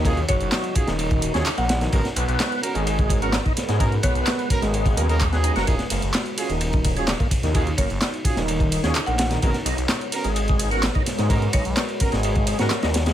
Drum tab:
RD |x-x-xxx-x-x-x-x-|x-x-x-x-x-x-x-x-|x-x-xxx-xx-xx-x-|x-x-x-x-x-x-x-x-|
HH |xxxxxxxxxxxxxxxx|xxxxxxxxxxxxxxxx|xxxxxxxxxxxxxxxx|xxxxxxxxxxxxxxxx|
CP |----x-------x---|----x-------x---|----x-------x---|----x-------x---|
SD |----o--o---o--oo|-o--o-------o-oo|----o--o--o--o-o|-o--o-------o--o|
BD |o-o---o--o------|o--------oo--o--|o-o---o--o--o---|o--------oo--oo-|

RD |x-x-xxx-x-x-x-xx|x-x-x-x-x-x-x-x-|x-x-xxx-x-x-xxxx|
HH |xxxxxxxxxxxxxxxx|xxxxxxxxxxxxxxxx|xxxxxxxxxxxxxxxx|
CP |----x-------x---|----x-------x---|----x-------x---|
SD |----o--o---o--oo|-o--o-------o-oo|----o--o---ooooo|
BD |o-o---o--o------|o--------o---o--|o-o---o--o------|